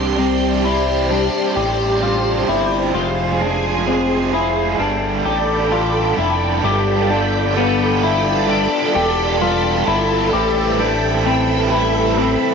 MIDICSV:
0, 0, Header, 1, 5, 480
1, 0, Start_track
1, 0, Tempo, 923077
1, 1533, Time_signature, 4, 2, 24, 8
1, 6523, End_track
2, 0, Start_track
2, 0, Title_t, "String machine"
2, 0, Program_c, 0, 50
2, 0, Note_on_c, 0, 67, 71
2, 0, Note_on_c, 0, 72, 60
2, 0, Note_on_c, 0, 74, 62
2, 0, Note_on_c, 0, 84, 75
2, 1515, Note_off_c, 0, 67, 0
2, 1516, Note_off_c, 0, 74, 0
2, 1534, Note_on_c, 0, 80, 63
2, 1535, Note_on_c, 0, 68, 68
2, 2472, Note_off_c, 0, 84, 0
2, 2474, Note_off_c, 0, 72, 0
2, 2484, Note_off_c, 0, 68, 0
2, 2484, Note_off_c, 0, 80, 0
2, 2493, Note_on_c, 0, 79, 63
2, 2494, Note_on_c, 0, 69, 69
2, 2494, Note_on_c, 0, 74, 65
2, 2495, Note_on_c, 0, 83, 78
2, 3444, Note_off_c, 0, 69, 0
2, 3444, Note_off_c, 0, 74, 0
2, 3444, Note_off_c, 0, 79, 0
2, 3444, Note_off_c, 0, 83, 0
2, 3457, Note_on_c, 0, 69, 70
2, 3457, Note_on_c, 0, 74, 70
2, 3457, Note_on_c, 0, 83, 86
2, 3459, Note_on_c, 0, 79, 65
2, 5356, Note_off_c, 0, 74, 0
2, 5356, Note_off_c, 0, 83, 0
2, 5357, Note_off_c, 0, 79, 0
2, 5374, Note_on_c, 0, 76, 66
2, 5374, Note_on_c, 0, 83, 81
2, 5375, Note_on_c, 0, 79, 65
2, 6325, Note_off_c, 0, 79, 0
2, 6334, Note_on_c, 0, 81, 67
2, 6523, Note_off_c, 0, 69, 0
2, 6523, Note_off_c, 0, 76, 0
2, 6523, Note_off_c, 0, 81, 0
2, 6523, Note_off_c, 0, 83, 0
2, 6523, End_track
3, 0, Start_track
3, 0, Title_t, "Clean electric guitar"
3, 0, Program_c, 1, 27
3, 0, Note_on_c, 1, 62, 69
3, 92, Note_off_c, 1, 62, 0
3, 94, Note_on_c, 1, 60, 78
3, 333, Note_off_c, 1, 60, 0
3, 334, Note_on_c, 1, 64, 69
3, 574, Note_off_c, 1, 64, 0
3, 574, Note_on_c, 1, 62, 78
3, 813, Note_on_c, 1, 67, 70
3, 814, Note_off_c, 1, 62, 0
3, 1051, Note_off_c, 1, 67, 0
3, 1053, Note_on_c, 1, 65, 72
3, 1291, Note_off_c, 1, 65, 0
3, 1293, Note_on_c, 1, 64, 73
3, 1530, Note_off_c, 1, 64, 0
3, 1533, Note_on_c, 1, 65, 87
3, 1773, Note_off_c, 1, 65, 0
3, 1775, Note_on_c, 1, 62, 68
3, 2012, Note_off_c, 1, 62, 0
3, 2015, Note_on_c, 1, 60, 73
3, 2253, Note_on_c, 1, 64, 68
3, 2254, Note_off_c, 1, 60, 0
3, 2493, Note_off_c, 1, 64, 0
3, 2494, Note_on_c, 1, 62, 82
3, 2732, Note_on_c, 1, 67, 72
3, 2733, Note_off_c, 1, 62, 0
3, 2972, Note_off_c, 1, 67, 0
3, 2974, Note_on_c, 1, 65, 73
3, 3212, Note_off_c, 1, 65, 0
3, 3214, Note_on_c, 1, 64, 68
3, 3452, Note_off_c, 1, 64, 0
3, 3454, Note_on_c, 1, 67, 90
3, 3693, Note_on_c, 1, 62, 80
3, 3694, Note_off_c, 1, 67, 0
3, 3933, Note_off_c, 1, 62, 0
3, 3936, Note_on_c, 1, 59, 84
3, 4174, Note_off_c, 1, 59, 0
3, 4176, Note_on_c, 1, 64, 79
3, 4415, Note_off_c, 1, 64, 0
3, 4415, Note_on_c, 1, 62, 84
3, 4654, Note_off_c, 1, 62, 0
3, 4654, Note_on_c, 1, 67, 78
3, 4893, Note_off_c, 1, 67, 0
3, 4895, Note_on_c, 1, 65, 84
3, 5132, Note_off_c, 1, 65, 0
3, 5134, Note_on_c, 1, 64, 83
3, 5371, Note_off_c, 1, 64, 0
3, 5373, Note_on_c, 1, 67, 90
3, 5613, Note_off_c, 1, 67, 0
3, 5616, Note_on_c, 1, 62, 73
3, 5853, Note_off_c, 1, 62, 0
3, 5855, Note_on_c, 1, 60, 87
3, 6094, Note_off_c, 1, 60, 0
3, 6094, Note_on_c, 1, 64, 75
3, 6334, Note_off_c, 1, 64, 0
3, 6334, Note_on_c, 1, 60, 88
3, 6523, Note_off_c, 1, 60, 0
3, 6523, End_track
4, 0, Start_track
4, 0, Title_t, "Overdriven electric guitar"
4, 0, Program_c, 2, 29
4, 0, Note_on_c, 2, 60, 45
4, 0, Note_on_c, 2, 62, 43
4, 0, Note_on_c, 2, 67, 52
4, 90, Note_on_c, 2, 48, 70
4, 91, Note_off_c, 2, 60, 0
4, 91, Note_off_c, 2, 67, 0
4, 93, Note_off_c, 2, 62, 0
4, 94, Note_on_c, 2, 55, 82
4, 97, Note_on_c, 2, 60, 80
4, 100, Note_on_c, 2, 62, 84
4, 102, Note_on_c, 2, 67, 80
4, 322, Note_off_c, 2, 67, 0
4, 328, Note_on_c, 2, 67, 54
4, 331, Note_off_c, 2, 48, 0
4, 331, Note_off_c, 2, 62, 0
4, 333, Note_off_c, 2, 55, 0
4, 335, Note_off_c, 2, 60, 0
4, 338, Note_on_c, 2, 62, 49
4, 345, Note_on_c, 2, 60, 44
4, 569, Note_on_c, 2, 55, 59
4, 570, Note_off_c, 2, 60, 0
4, 571, Note_off_c, 2, 67, 0
4, 575, Note_off_c, 2, 62, 0
4, 576, Note_on_c, 2, 60, 63
4, 582, Note_on_c, 2, 62, 64
4, 588, Note_on_c, 2, 67, 59
4, 803, Note_off_c, 2, 67, 0
4, 809, Note_on_c, 2, 67, 55
4, 811, Note_off_c, 2, 55, 0
4, 813, Note_off_c, 2, 62, 0
4, 815, Note_off_c, 2, 60, 0
4, 819, Note_on_c, 2, 62, 52
4, 828, Note_on_c, 2, 60, 44
4, 1051, Note_off_c, 2, 67, 0
4, 1052, Note_off_c, 2, 60, 0
4, 1052, Note_on_c, 2, 48, 77
4, 1054, Note_off_c, 2, 62, 0
4, 1055, Note_on_c, 2, 55, 80
4, 1058, Note_on_c, 2, 60, 86
4, 1060, Note_on_c, 2, 62, 83
4, 1063, Note_on_c, 2, 67, 81
4, 1283, Note_off_c, 2, 67, 0
4, 1289, Note_on_c, 2, 67, 53
4, 1292, Note_off_c, 2, 48, 0
4, 1293, Note_off_c, 2, 62, 0
4, 1294, Note_off_c, 2, 55, 0
4, 1296, Note_off_c, 2, 60, 0
4, 1300, Note_on_c, 2, 62, 47
4, 1307, Note_on_c, 2, 60, 47
4, 1531, Note_off_c, 2, 67, 0
4, 1531, Note_on_c, 2, 41, 81
4, 1533, Note_on_c, 2, 48, 76
4, 1535, Note_off_c, 2, 60, 0
4, 1536, Note_off_c, 2, 62, 0
4, 1537, Note_on_c, 2, 53, 78
4, 1537, Note_on_c, 2, 56, 82
4, 1540, Note_on_c, 2, 65, 90
4, 1543, Note_on_c, 2, 68, 89
4, 1762, Note_off_c, 2, 68, 0
4, 1769, Note_off_c, 2, 65, 0
4, 1769, Note_on_c, 2, 68, 52
4, 1772, Note_off_c, 2, 41, 0
4, 1773, Note_off_c, 2, 48, 0
4, 1775, Note_off_c, 2, 53, 0
4, 1775, Note_off_c, 2, 56, 0
4, 1775, Note_on_c, 2, 65, 45
4, 1781, Note_on_c, 2, 56, 45
4, 1787, Note_on_c, 2, 53, 41
4, 2011, Note_off_c, 2, 53, 0
4, 2011, Note_off_c, 2, 68, 0
4, 2012, Note_on_c, 2, 41, 80
4, 2013, Note_off_c, 2, 56, 0
4, 2014, Note_off_c, 2, 65, 0
4, 2015, Note_on_c, 2, 48, 80
4, 2017, Note_on_c, 2, 53, 85
4, 2019, Note_on_c, 2, 56, 79
4, 2022, Note_on_c, 2, 65, 87
4, 2025, Note_on_c, 2, 68, 80
4, 2244, Note_off_c, 2, 68, 0
4, 2250, Note_off_c, 2, 65, 0
4, 2250, Note_on_c, 2, 68, 56
4, 2253, Note_off_c, 2, 41, 0
4, 2254, Note_off_c, 2, 48, 0
4, 2255, Note_off_c, 2, 53, 0
4, 2256, Note_off_c, 2, 56, 0
4, 2256, Note_on_c, 2, 65, 49
4, 2262, Note_on_c, 2, 56, 51
4, 2267, Note_on_c, 2, 53, 41
4, 2487, Note_off_c, 2, 53, 0
4, 2489, Note_on_c, 2, 55, 59
4, 2492, Note_off_c, 2, 68, 0
4, 2494, Note_off_c, 2, 56, 0
4, 2495, Note_off_c, 2, 65, 0
4, 2496, Note_on_c, 2, 59, 58
4, 2502, Note_on_c, 2, 62, 57
4, 2507, Note_on_c, 2, 69, 59
4, 2724, Note_off_c, 2, 69, 0
4, 2730, Note_on_c, 2, 69, 51
4, 2731, Note_off_c, 2, 55, 0
4, 2735, Note_off_c, 2, 59, 0
4, 2735, Note_off_c, 2, 62, 0
4, 2741, Note_on_c, 2, 62, 50
4, 2749, Note_on_c, 2, 59, 44
4, 2971, Note_off_c, 2, 59, 0
4, 2971, Note_on_c, 2, 55, 74
4, 2972, Note_off_c, 2, 69, 0
4, 2975, Note_off_c, 2, 62, 0
4, 2977, Note_on_c, 2, 59, 79
4, 2982, Note_on_c, 2, 62, 81
4, 2984, Note_on_c, 2, 69, 88
4, 3205, Note_off_c, 2, 69, 0
4, 3212, Note_off_c, 2, 55, 0
4, 3212, Note_on_c, 2, 69, 50
4, 3215, Note_off_c, 2, 59, 0
4, 3215, Note_off_c, 2, 62, 0
4, 3222, Note_on_c, 2, 62, 45
4, 3229, Note_on_c, 2, 59, 41
4, 3450, Note_off_c, 2, 59, 0
4, 3452, Note_off_c, 2, 69, 0
4, 3453, Note_on_c, 2, 55, 85
4, 3456, Note_on_c, 2, 59, 98
4, 3457, Note_off_c, 2, 62, 0
4, 3462, Note_on_c, 2, 65, 98
4, 3464, Note_on_c, 2, 69, 94
4, 3688, Note_off_c, 2, 69, 0
4, 3693, Note_off_c, 2, 55, 0
4, 3694, Note_on_c, 2, 69, 58
4, 3695, Note_off_c, 2, 59, 0
4, 3696, Note_off_c, 2, 65, 0
4, 3703, Note_on_c, 2, 65, 48
4, 3711, Note_on_c, 2, 59, 46
4, 3931, Note_off_c, 2, 59, 0
4, 3932, Note_on_c, 2, 55, 64
4, 3934, Note_off_c, 2, 69, 0
4, 3936, Note_off_c, 2, 65, 0
4, 3937, Note_on_c, 2, 59, 73
4, 3942, Note_on_c, 2, 65, 79
4, 3949, Note_on_c, 2, 69, 73
4, 4163, Note_off_c, 2, 69, 0
4, 4169, Note_on_c, 2, 69, 59
4, 4172, Note_off_c, 2, 55, 0
4, 4173, Note_off_c, 2, 65, 0
4, 4175, Note_off_c, 2, 59, 0
4, 4180, Note_on_c, 2, 65, 61
4, 4187, Note_on_c, 2, 59, 44
4, 4405, Note_off_c, 2, 59, 0
4, 4408, Note_on_c, 2, 55, 88
4, 4409, Note_off_c, 2, 65, 0
4, 4411, Note_off_c, 2, 69, 0
4, 4412, Note_on_c, 2, 59, 80
4, 4416, Note_on_c, 2, 65, 86
4, 4419, Note_on_c, 2, 69, 86
4, 4641, Note_off_c, 2, 69, 0
4, 4647, Note_on_c, 2, 69, 62
4, 4650, Note_off_c, 2, 55, 0
4, 4651, Note_off_c, 2, 65, 0
4, 4652, Note_off_c, 2, 59, 0
4, 4657, Note_on_c, 2, 65, 49
4, 4664, Note_on_c, 2, 59, 44
4, 4887, Note_on_c, 2, 55, 66
4, 4888, Note_off_c, 2, 59, 0
4, 4890, Note_off_c, 2, 69, 0
4, 4895, Note_off_c, 2, 65, 0
4, 4895, Note_on_c, 2, 59, 68
4, 4901, Note_on_c, 2, 65, 70
4, 4905, Note_on_c, 2, 69, 77
4, 5121, Note_off_c, 2, 69, 0
4, 5127, Note_on_c, 2, 69, 59
4, 5130, Note_off_c, 2, 55, 0
4, 5131, Note_off_c, 2, 65, 0
4, 5134, Note_off_c, 2, 59, 0
4, 5137, Note_on_c, 2, 65, 53
4, 5146, Note_on_c, 2, 59, 51
4, 5369, Note_on_c, 2, 45, 90
4, 5370, Note_off_c, 2, 69, 0
4, 5373, Note_on_c, 2, 52, 90
4, 5375, Note_off_c, 2, 59, 0
4, 5375, Note_off_c, 2, 65, 0
4, 5376, Note_on_c, 2, 55, 90
4, 5377, Note_on_c, 2, 60, 93
4, 5381, Note_on_c, 2, 64, 100
4, 5382, Note_on_c, 2, 71, 99
4, 5603, Note_off_c, 2, 71, 0
4, 5609, Note_on_c, 2, 71, 59
4, 5610, Note_off_c, 2, 64, 0
4, 5611, Note_off_c, 2, 45, 0
4, 5613, Note_off_c, 2, 52, 0
4, 5615, Note_off_c, 2, 55, 0
4, 5615, Note_off_c, 2, 60, 0
4, 5617, Note_on_c, 2, 64, 53
4, 5621, Note_on_c, 2, 60, 51
4, 5626, Note_on_c, 2, 55, 48
4, 5844, Note_off_c, 2, 55, 0
4, 5850, Note_off_c, 2, 60, 0
4, 5850, Note_on_c, 2, 55, 70
4, 5851, Note_off_c, 2, 71, 0
4, 5855, Note_off_c, 2, 64, 0
4, 5856, Note_on_c, 2, 60, 75
4, 5861, Note_on_c, 2, 64, 72
4, 5866, Note_on_c, 2, 71, 75
4, 6082, Note_off_c, 2, 71, 0
4, 6088, Note_off_c, 2, 64, 0
4, 6088, Note_on_c, 2, 71, 64
4, 6091, Note_off_c, 2, 55, 0
4, 6095, Note_off_c, 2, 60, 0
4, 6095, Note_on_c, 2, 64, 61
4, 6102, Note_on_c, 2, 60, 54
4, 6107, Note_on_c, 2, 55, 51
4, 6328, Note_off_c, 2, 55, 0
4, 6329, Note_on_c, 2, 45, 85
4, 6331, Note_off_c, 2, 60, 0
4, 6331, Note_off_c, 2, 71, 0
4, 6332, Note_off_c, 2, 64, 0
4, 6332, Note_on_c, 2, 52, 81
4, 6334, Note_on_c, 2, 55, 88
4, 6337, Note_on_c, 2, 60, 91
4, 6338, Note_on_c, 2, 64, 93
4, 6341, Note_on_c, 2, 71, 99
4, 6523, Note_off_c, 2, 45, 0
4, 6523, Note_off_c, 2, 52, 0
4, 6523, Note_off_c, 2, 55, 0
4, 6523, Note_off_c, 2, 60, 0
4, 6523, Note_off_c, 2, 64, 0
4, 6523, Note_off_c, 2, 71, 0
4, 6523, End_track
5, 0, Start_track
5, 0, Title_t, "Analog synth bass"
5, 0, Program_c, 3, 38
5, 0, Note_on_c, 3, 36, 97
5, 673, Note_off_c, 3, 36, 0
5, 813, Note_on_c, 3, 33, 88
5, 1272, Note_off_c, 3, 33, 0
5, 1293, Note_on_c, 3, 31, 78
5, 1521, Note_off_c, 3, 31, 0
5, 1531, Note_on_c, 3, 29, 92
5, 2471, Note_off_c, 3, 29, 0
5, 2492, Note_on_c, 3, 31, 101
5, 2721, Note_off_c, 3, 31, 0
5, 2734, Note_on_c, 3, 33, 81
5, 3193, Note_off_c, 3, 33, 0
5, 3214, Note_on_c, 3, 29, 78
5, 3442, Note_off_c, 3, 29, 0
5, 3453, Note_on_c, 3, 31, 103
5, 4512, Note_off_c, 3, 31, 0
5, 4654, Note_on_c, 3, 28, 88
5, 5113, Note_off_c, 3, 28, 0
5, 5136, Note_on_c, 3, 31, 86
5, 5363, Note_off_c, 3, 31, 0
5, 5376, Note_on_c, 3, 33, 102
5, 6434, Note_off_c, 3, 33, 0
5, 6523, End_track
0, 0, End_of_file